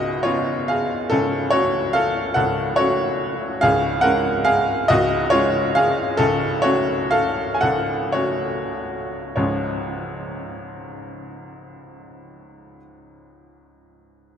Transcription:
upright piano
Already playing: C#1 C#2 F#4 D#5
0.23 B3 C#4 F4 C#5
0.68 G#4 F5
1.10 C#1 C#2 C#4 A4
1.50 A3 C#4 F#4 C#5
1.93 A4 F5
2.34 C#1 C#2 A4 F#5
2.76 A3 C#4 F#4 C#5
3.61 C#1 C#2 G#4 F5
4.01 G#3 C#4 A#4 F#5
4.45 G#4 F5
4.88 C#1 C#2 F#4 D#5
5.30 G#3 C#4 F4 C#5
5.75 G#4 F5
6.17 C#1 C#2 C#4 A4
6.62 A3 C#4 F#4 C#5
7.11 A4 F5
7.55 G#5
7.61 C#1 C#2 A4 F#5
8.12 A3 C#4 F#4 C#5
9.36 C#2 G#2 F3 G#3 C#4 F4 C#5

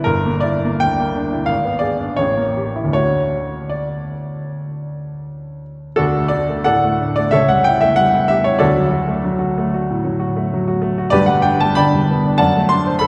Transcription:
grand piano
Already playing: G1 B3 E4 B4 D5 E5 G5
0.04 G1 A#4
0.26 A#3
0.40 E4 D5
0.65 A#3
0.80 D2 G5
1.00 A#3
1.16 D4
1.33 E4
1.46 G#1 F5
1.65 B3
1.79 G#4 D5
2.00 D4
2.17 A1 C#5
2.37 A#3
2.57 G4
2.76 E4
2.84 D2
2.93 A3 D4 F#4 C#5
3.70 D5
5.96 D2 D4 F#4 A4
6.16 A3
6.28 D4 D5
6.49 A3
6.64 A2 A4 D5 F#5
6.84 A3
7.01 D4
7.16 A3 D5
7.31 C#2 A4 C#5 E5
7.49 G3 F#5
7.64 E4 G5
7.81 A3 E5
7.96 G3 F#5
8.14 E4
8.28 G4 E5
8.44 E4 C#5
8.59 D2 F#4 A4 D5
8.77 F#3
8.91 F#4
9.08 A3
9.24 F#3
9.39 F#4
9.58 A3
9.74 F#4
9.90 A2
10.05 F#3
10.20 F#4
10.36 A3
10.53 F#3
10.68 F#4
10.82 A3
10.98 F#4
11.10 G1 G2 G4 B4 D5
11.26 G3 F#5
11.42 D4 G5
11.60 G3 A5
11.75 D3 D5 G5 B5
11.93 G3
12.11 B3
12.27 D4
12.38 F#2 D5 F#5 A5
12.56 A3
12.69 D4 C6
12.87 C5
12.99 A4 B5

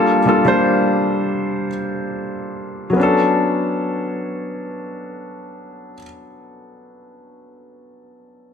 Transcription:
grand piano
Already playing: G3 A#3 D4 F4 A4
0.25 G3 A#3 D4 F4 A4
0.45 G3 A#3 D4 F4 C5
2.90 F#3 B3
2.96 C#4 D4
3.03 A4

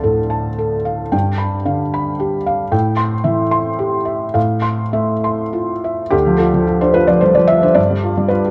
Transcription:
felt piano
Already playing: D2 F5 A5
0.03 A2 A4
0.30 A5
0.58 A4
0.85 F5
1.12 G2 G5
1.38 B5
1.65 D3 F5
1.94 B5
2.20 G4
2.47 F5
2.72 A2 G5
2.97 C6
3.24 E3 E5
3.51 C6
3.79 G4
4.05 E5
4.34 A2 F5
4.62 C6
4.93 A3 E5
5.24 C6
5.53 F4
5.84 E5
6.10 D2 G4
6.27 F3
6.38 F4 A4
6.54 F3
6.67 F4
6.81 D4 C5
6.94 F4 B4
7.08 F3 D5
7.21 G3 C5
7.35 F3 D5
7.47 F4 E5
7.63 D4 C5
7.74 G2 D5
7.90 G3
8.03 F4
8.17 G3
8.28 F4 B4
8.45 G4

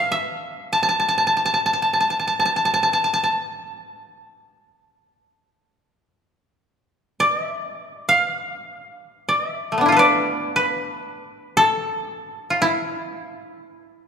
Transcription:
koto
Already playing: D5 F5 A5
0.12 E5
0.73 A5
0.83 A5
0.89 A5
1.00 A5
1.08 A5
1.18 A5
1.27 A5
1.37 A5
1.45 A5
1.54 A5
1.66 A5
1.73 A5
1.82 A5
1.93 A5
2.00 A5
2.10 A5
2.19 A5
2.27 A5
2.40 A5
2.45 A5
2.56 A5
2.65 A5
2.74 A5
2.83 A5
2.93 A5
3.04 A5
3.14 A5
3.24 A5
7.20 D5
7.45 E5
8.09 F5
9.29 D5
9.50 E5
9.72 A3
9.78 B3 D4
9.86 E4 F4
9.92 A4
9.97 B4 D5
10.56 B4
11.57 A4
12.50 F4
12.62 E4

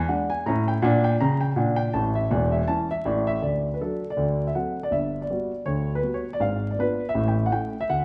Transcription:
grand piano
0.08 G#3 D4 F#5
0.30 G#5
0.46 A2 C#4 A#5
0.68 G5
0.82 A#2 D4 F#5
1.04 G5
1.20 C#3 A#5
1.41 G5
1.56 A#2 D4 F#5
1.76 G5
1.93 A1 A2 A5
2.15 E5
2.31 E1 E2 D5
2.52 E5
2.67 E3 C#4 A5
2.91 E5
3.05 A1 A2 D5
3.27 E5
3.42 D2 D3 D5
3.74 B4
3.81 F#3 D4 A4
4.10 D5
4.17 D2 D3
4.47 E5
4.55 F#3 C4 A4 F#5
4.83 D5
4.91 G1 G2 E5
5.22 D5
5.30 G3 B3 F#4
5.65 D2 D3 C#5
5.95 B4
6.02 G3 B3 F#4
6.14 C#5
6.33 D5
6.40 G#1 G#2 F5
6.71 D5
6.79 B3 D4 F4 B4
7.09 E5
7.14 A1 A2
7.28 G5
7.46 F#5
7.51 A3 C#4 E4 G5
7.80 E5
7.89 D2 D3 F#5

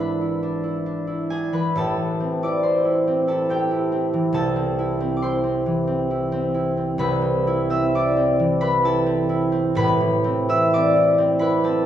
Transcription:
harp
Already playing: G#1 G#2 E3 E4 G#4 D5 G#5
0.00 D4 B4 B5
0.21 E4
0.43 D4
0.64 E4
0.86 D4
1.07 E4
1.30 D4 G#4 G#5
1.52 E3 B4 B5
1.75 A1 A2 A4 A5
1.97 E3
2.20 C4
2.43 E4 D5 D6
2.63 C4 C5 C6
2.84 E4
3.07 C4
3.27 E4 A4 A5
3.49 C4 G4 G5
3.71 E4
3.92 C4
4.13 E3
4.33 C2 C3 A4 A5
4.56 C4
4.79 E4
5.00 C4
5.17 D6
5.22 E4 C5 C6
5.44 C4
5.66 E3
5.87 C4
6.11 E4
6.32 C4
6.54 E4
6.77 C4
6.98 C2 C3 B4 B5
7.22 C4
7.47 E4
7.70 C4 E5 E6
7.95 E4 D5 D6
8.17 C4
8.39 E3
8.61 C4 B4 B5
8.84 E4 A4 A5
9.06 C4
9.29 E4
9.52 C4
9.75 A1 A2 B4 B5
10.01 E3
10.24 C4
10.49 E4 E5 E6
10.73 C4 D5 D6
10.96 E4
11.18 C4
11.39 E4 B4 B5
11.64 C4 A4 A5

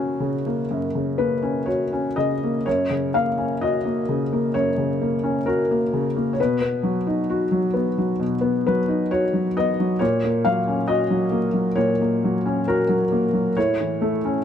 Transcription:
felt piano
Already playing: F#2 C#3 A#3 C#4 F#4 G#4
0.20 C#3
0.46 A#3
0.71 F#2
0.95 C#3
1.18 A#3 B4
1.43 C#4
1.66 F#4 C#5
1.93 C#4
2.16 C#3 D#5
2.43 A#3
2.66 F#2 C#5
2.90 C#3
3.14 A#3 F5
3.38 C#4
3.61 F#4 D#5
3.85 A#3
4.09 C#3
4.33 A#3
4.54 F#2 C#5
4.78 C#3
5.02 A#3
5.23 C#4
5.46 F#4 A#4
5.71 A#3
5.93 C#3
6.16 A#3
6.33 C#5
6.40 B2 B4
6.61 B3
6.83 F#3
7.07 D#4
7.30 F#4
7.52 F#3
7.74 B3
7.98 F#3
8.20 B2
8.41 B3
8.66 F#3 B4
8.88 D#4
9.11 F#4 C#5
9.33 F#3
9.57 B3 D#5
9.80 F#3
9.99 A#2 C#5
10.24 A#3
10.45 F#3 F5
10.68 C#4
10.88 F#4 D#5
11.10 F#3
11.31 A#3
11.53 F#3
11.76 A#2 C#5
12.01 A#3
12.24 F#3
12.46 C#4
12.68 F#4 A#4
12.89 F#3
13.12 A#3
13.33 F#3
13.57 A2 C#5
13.80 E3
14.01 A3
14.25 C#4

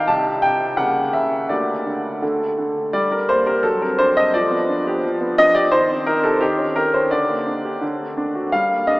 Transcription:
grand piano
0.07 C2 C3 D#4 G4 A5
0.42 C3 G5
0.77 C#3 A#3 G4 F#5
1.13 C#3 E5
1.49 D2 D3 A#3 G4 D5
1.86 D3
2.22 D3 A3 A4
2.58 D3
2.93 G3 D5
3.11 G3 A#4
3.29 A#3 C5
3.46 G4 A#4
3.63 F#3 A4
3.82 C4 A#4
3.99 D4 C5
4.17 A4 D#5
4.34 F3 D5
4.51 B3
4.69 D4
4.87 G4
5.04 F3
5.21 B3
5.38 D4 D#5
5.55 G4 D5
5.72 D#3 C5
5.89 C4
6.06 D#4 A#4
6.24 G4 A4
6.41 D#3 G4
6.58 C#4
6.76 D#4 A#4
6.94 C#4 C5
7.11 D3 D5
7.28 A#3
7.46 D4
7.65 G4
7.82 D3
8.00 A3
8.17 D4
8.35 F#4
8.52 G3 F5
8.69 A#3
8.87 D4 D#5

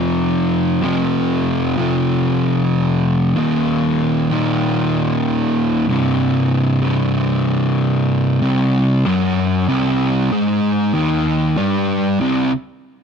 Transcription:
distorted electric guitar
Already playing: F2 C3 F3
0.82 F2 C3 F3
1.77 F2 C3 F3
3.35 D#2 A#2 D#3
4.30 D#2 A#2 D#3
5.88 C2 G2 C3
6.82 C2 G2 C3
8.42 C2 C3
9.05 F#2 F#3
9.68 C2 C3
10.32 G#2 G#3
10.94 D#2 D#3
11.57 G2 G3
12.20 C2 C3

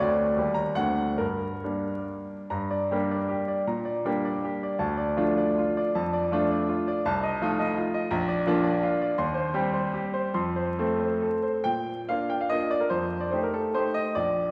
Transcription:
grand piano
0.00 D2 A3 C4 F#4 D5
0.37 D#2 G3 A#3 G4
0.54 A#5
0.75 D2 A3 C4 D4 F#5
1.18 G2 A#4
1.64 G3 A#3 D4
2.50 G2 A#5
2.71 D5
2.91 G3 A#3 D4 G4
3.11 D5
3.28 G4
3.48 D5
3.67 A#2 A#5
3.85 D5
4.05 G3 A#3 D4 G4
4.25 D5
4.44 G4
4.63 D5
4.79 D2 A5
4.98 D5
5.17 F3 A3 D4 F4
5.37 D5
5.58 F4
5.77 D5
5.95 F2 A5
6.13 D5
6.31 F3 A3 D4 F4
6.51 D5
6.69 F4
6.88 D5
7.05 C2 A5
7.23 D#5
7.42 F3 A3 D#4 F4
7.59 D#5
7.77 F4
7.94 D#5
8.11 A#1 A#5
8.28 D5
8.47 F3 A#3 D4 F4
8.64 D5
8.83 F4
9.01 D5
9.18 D#2 C6
9.34 C5
9.54 G3 C4 G4
9.74 C5
9.94 G4
10.14 C5
10.34 F2 C6
10.56 C5
10.79 A3 C4 A4
11.00 C5
11.22 A4
11.43 C5
11.64 A#2 G5
12.09 A#3 D4 F4 F5
12.30 G5
12.41 F5
12.49 A#3 D4 F4 D#5
12.71 D5
12.80 A#4
12.90 F2 C5
13.20 D5
13.31 A3 D#4 G4 C5
13.43 A#4
13.54 A4
13.74 A3 D#4 G4 C5
13.94 D#5
14.15 A#1 D5

